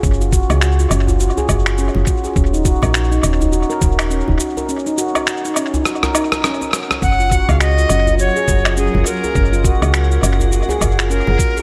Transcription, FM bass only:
X:1
M:4/4
L:1/16
Q:"Swing 16ths" 1/4=103
K:Gb
V:1 name="FM bass" clef=bass
G,,,3 D,,3 G,,,3 z G,,,3 G,,, z2 | E,,,3 B,,,3 E,,,3 z E,,,3 E,,, z2 | z16 | G,,,3 D,,3 G,,,3 z G,,,3 G,,, z2 |
G,,,3 D,,3 G,,,3 z G,,,3 G,,, z2 |]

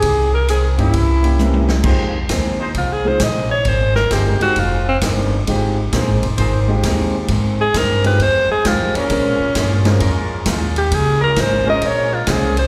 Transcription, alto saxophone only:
X:1
M:4/4
L:1/8
Q:"Swing" 1/4=132
K:Fm
V:1 name="Alto saxophone"
z8 | z4 (3F A c e d | c B G _G F C z2 | z8 |
z A B =B c A F D- | D4 z3 G | A B c e d F A c |]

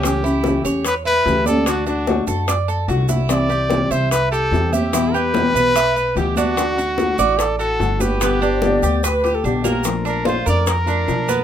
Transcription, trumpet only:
X:1
M:4/4
L:1/8
Q:1/4=147
K:Dmix
V:1 name="Trumpet"
G4 B B2 A | F D2 z4 z | d3 c B A2 G- | G B4- B G F- |
F4 A A2 G- | G6 z _B- | _B B c d B4 |]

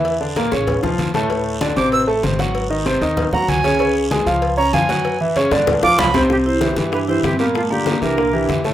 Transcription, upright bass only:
X:1
M:4/4
L:1/8
Q:1/4=192
K:Gdor
V:1 name="Upright bass" clef=bass
E,,3 A,,,2 C,, D,,2- | D,,3 A,,,3 _A,,,2- | _A,,,3 _E,,2 D,, _D,,2- | _D,,3 D,,3 _G,,2- |
_G,,3 =G,,2 D,, C,,2- | [K:C] C,,3 G,,3 G,,2- | G,,3 C,,3 F,,2 |]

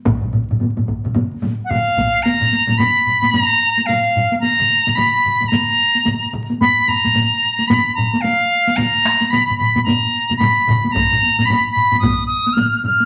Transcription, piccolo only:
X:1
M:4/4
L:1/16
Q:"Swing 16ths" 1/4=110
K:none
V:1 name="Piccolo"
z8 z3 z/2 _g/2 f4 | _b4 _c'4 b4 f4 | _b4 _c'4 b6 z2 | _c'2 _b6 c'2 b2 f4 |
_b4 _c'2 c'2 b4 c'3- c'/2 c'/2 | _b4 _c'2 c'2 _e'2 e'2 f'2 f'2 |]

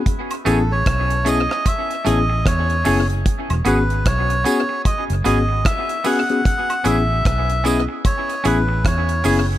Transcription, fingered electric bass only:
X:1
M:4/4
L:1/16
Q:"Swing 16ths" 1/4=75
K:Alyd
V:1 name="Fingered electric bass" clef=bass
z2 A,,,2 B,,,3 z3 A,,,2 E,,2 F,,,2 | z E,,, G,,,2 B,,,2 z3 F,,, G,,,2 z4 | z2 A,,,2 B,,,3 z3 A,,,2 E,,2 F,,,2 |]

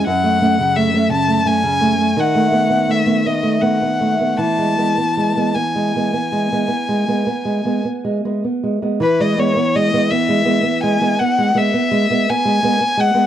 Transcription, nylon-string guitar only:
X:1
M:12/8
L:1/16
Q:3/8=55
K:E
V:1 name="Nylon-string guitar"
F,, A, [A,C] C, A, [A,C] C, A, [A,C] C, A, [A,C] D, A, [A,B,] B, A, [A,B,] B, A, [A,B,] B, A, [A,B,] | E, G, [G,B,] B, G, [G,B,] B, G, [G,B,] B, G, [G,B,] B, G, [G,B,] B, G, [G,B,] B, G, [G,B,] B, G, [G,B,] | E, G, [G,B,] B, G, [G,B,] B, G, [G,B,] B, G, [G,B,] B, G, [G,B,] B, G, [G,B,] B, G, [G,B,] B, G, [G,B,] |]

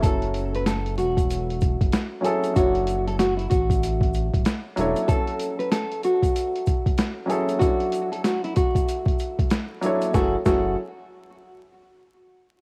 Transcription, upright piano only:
X:1
M:4/4
L:1/8
Q:"Swing 16ths" 1/4=95
K:F#m
V:1 name="Upright piano"
[F,CEFA]3 z4 [F,CEGA] | [F,DEAc]3 z4 [F,DEAc] | [F,CEFA]3 z4 [F,CEGA] | [F,DEAc]3 z4 [F,DEAc] |
[F,CEGA] [F,CEGA] z6 |]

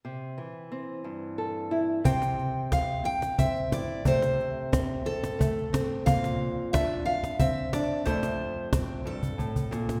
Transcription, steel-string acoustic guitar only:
X:1
M:6/8
L:1/8
Q:3/8=60
K:Cmix
V:1 name="Steel-string acoustic guitar"
z6 | g2 f g e d | c2 z A2 z | f2 e f e d |
c2 z A2 z |]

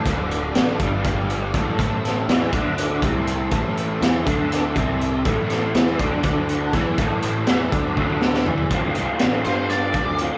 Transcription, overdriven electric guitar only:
X:1
M:7/8
L:1/8
Q:1/4=121
K:Ddor
V:1 name="Overdriven electric guitar" clef=bass
[D,,D,]2 [A,,A,] [G,,G,] [G,,G,]2 [A,,A,] | [A,,A,]2 [E,E] [D,D]2 [C,C]2 | [A,,A,]2 [E,E] [D,D]2 [C,C]2 | [A,,A,]2 [E,E] [D,D] [D,D]2 [E,E] |
[A,,A,]2 [E,E] [D,D] [D,D]2 [E,E] | [D,,A,,D,A,CF] [D,A,CF] [D,A,CF] [D,A,CF]3 [D,,A,,D,A,CF] |]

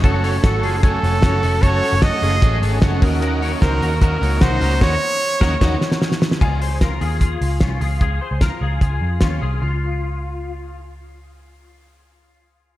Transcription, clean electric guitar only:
X:1
M:4/4
L:1/8
Q:1/4=150
K:Db
V:1 name="Clean electric guitar"
[G=A] [Ad] [GA] [F_A] [Da]2 [DG] [G=A] | [G=A] [Ad] [GA] [F_A] [DA]2 [DG] [GB] | [GB] [Bd] [Gc] [GB] [GB]2 [EG] [GB] | [EG] z2 [GB] [EG] z3 |
[FA] [Ac] [FB] [FA] [FA]2 [DF] [FA] | [FA] [Ac] [FB] [FA] [FA]2 [DF] [FA] | F6 z2 | z8 |]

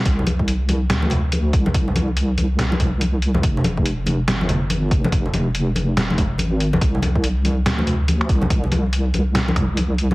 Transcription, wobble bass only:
X:1
M:4/4
L:1/8
Q:"Swing 16ths" 1/4=142
K:Fdor
V:1 name="Wobble bass" clef=bass
C,,4 D,,3 C,,- | C,,3 C,,4- C,, | F,,,4 G,,,3 F,,,- | F,,,3 F,,,3 A,,,2 |
C,,4 D,,3 C,,- | C,,3 C,,4- C,, |]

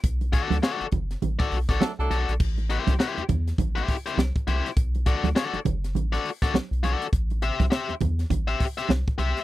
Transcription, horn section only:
X:1
M:4/4
L:1/16
Q:"Swing 16ths" 1/4=102
K:Ador
V:1 name="Horn section"
z12 [F,A,DA] [F,A,DA]2 z | z16 | z16 | z16 |]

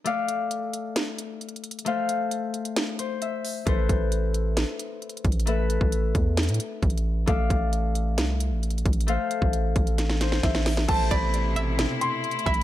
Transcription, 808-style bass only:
X:1
M:4/4
L:1/16
Q:1/4=133
K:Am
V:1 name="808-style bass" clef=bass
z16 | z16 | A,,,2 A,,,6- A,,, z4 z A,,,2- | A,,,3 A,,,3 E,,3 A,, z2 A,,,4 |
A,,,2 A,,,6 C,,3 A,,,3 A,,,2- | A,,, z2 A,,,3 A,,,6 A,,,4 | A,,,2 A,,,6- A,,, z4 z A,,,2 |]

